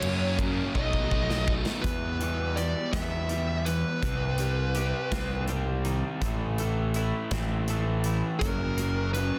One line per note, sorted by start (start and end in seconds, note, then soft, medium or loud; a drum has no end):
0.00 0.39 F#2 medium
0.00 0.62 F#2 medium
0.00 0.38 C#3 loud
0.00 0.73 F#3 medium
0.00 0.73 A#3 medium
0.00 0.74 C#4 loud
0.00 0.41 C#4 medium
0.00 0.34 C#5 medium
0.00 ride medium
0.05 0.39 F#3 medium
0.05 0.41 A#3 medium
0.39 0.73 C#3 medium
0.39 0.74 F#3 medium
0.39 0.75 A#3 medium
0.39 0.75 C#4 medium
0.39 kick medium
0.39 ride medium
0.75 1.64 B1 medium
0.75 1.10 B2 medium
0.75 1.12 F#3 medium
0.75 1.13 A3 medium
0.75 1.13 D#4 medium
0.75 1.53 D#5 loud
0.75 kick medium
0.93 kick medium
1.11 1.82 B2 medium
1.11 1.83 F#3 medium
1.11 1.83 A3 medium
1.11 1.83 D#4 medium
1.11 kick medium
1.30 snare medium
1.47 1.83 F#3 medium
1.47 1.83 A3 medium
1.47 1.82 D#4 medium
1.47 kick loud
1.66 snare medium
1.82 2.73 E2 medium
1.82 2.19 E2 medium
1.82 3.67 E2 medium
1.82 2.20 B2 loud
1.82 2.58 B4 medium
1.82 kick medium
1.82 closed hi-hat medium
1.86 2.20 E3 loud
2.20 2.58 E2 medium
2.20 2.58 B2 medium
2.20 2.58 E3 medium
2.20 3.28 G3 medium
2.20 closed hi-hat medium
2.56 2.93 E2 medium
2.56 2.94 B2 medium
2.56 2.94 E3 medium
2.56 4.03 G4 medium
2.56 2.90 D5 medium
2.56 closed hi-hat medium
2.93 3.83 E2 medium
2.93 3.30 E2 medium
2.93 3.31 B2 medium
2.93 3.30 E3 loud
2.93 4.03 B3 medium
2.93 3.68 E5 loud
2.93 kick medium
2.93 snare loud
2.93 closed hi-hat medium
3.29 4.01 E2 medium
3.29 4.02 B2 medium
3.29 4.02 E3 medium
3.29 4.02 G3 medium
3.29 closed hi-hat medium
3.65 4.03 E3 medium
3.65 5.44 B4 medium
3.65 closed hi-hat medium
4.02 4.92 C2 medium
4.02 4.38 C3 medium
4.02 5.86 C3 medium
4.02 4.39 G3 medium
4.02 4.40 C4 medium
4.02 kick medium
4.02 closed hi-hat medium
4.38 4.75 C3 medium
4.38 4.75 G3 medium
4.38 5.48 G3 medium
4.38 4.77 C4 medium
4.38 closed hi-hat medium
4.75 5.11 C3 medium
4.75 5.12 G3 medium
4.75 5.13 C4 medium
4.75 6.22 G4 medium
4.75 closed hi-hat medium
5.12 6.01 C2 medium
5.12 5.49 C3 medium
5.12 5.49 G3 medium
5.12 6.22 C4 medium
5.12 5.50 C4 medium
5.12 kick medium
5.12 snare loud
5.12 closed hi-hat medium
5.48 6.20 C3 medium
5.48 6.22 G3 medium
5.48 6.20 G3 medium
5.48 6.21 C4 medium
5.48 closed hi-hat medium
5.85 6.22 D#3 medium
5.85 closed hi-hat medium
6.21 7.11 A1 medium
6.21 8.04 A2 medium
6.21 6.58 A2 medium
6.21 6.59 E3 loud
6.21 6.59 A3 loud
6.21 kick medium
6.21 closed hi-hat medium
6.58 6.95 A2 medium
6.58 6.95 E3 medium
6.58 7.69 A3 medium
6.58 6.96 A3 medium
6.58 closed hi-hat medium
6.94 7.31 A2 medium
6.94 7.32 E3 medium
6.94 7.32 A3 medium
6.94 8.42 E4 medium
6.94 closed hi-hat medium
7.31 8.21 A1 loud
7.31 7.67 A2 medium
7.31 7.68 E3 medium
7.31 7.69 A3 loud
7.31 8.42 C4 medium
7.31 kick medium
7.31 snare loud
7.31 closed hi-hat medium
7.68 8.39 A2 medium
7.68 8.40 E3 medium
7.68 8.40 A3 medium
7.68 8.42 A3 medium
7.68 closed hi-hat medium
8.04 8.42 E3 medium
8.04 closed hi-hat medium
8.39 9.31 F#1 medium
8.39 9.39 F#2 medium
8.39 8.78 F#2 medium
8.39 8.78 C#3 loud
8.39 8.79 F#3 loud
8.39 9.09 A#4 medium
8.39 kick loud
8.39 closed hi-hat medium
8.77 9.15 F#2 medium
8.77 9.16 C#3 medium
8.77 9.16 F#3 loud
8.77 9.39 A#3 medium
8.77 closed hi-hat medium
9.13 9.39 F#2 medium
9.13 9.39 C#3 medium
9.13 9.39 B4 medium
9.13 closed hi-hat medium
9.18 9.39 F#3 medium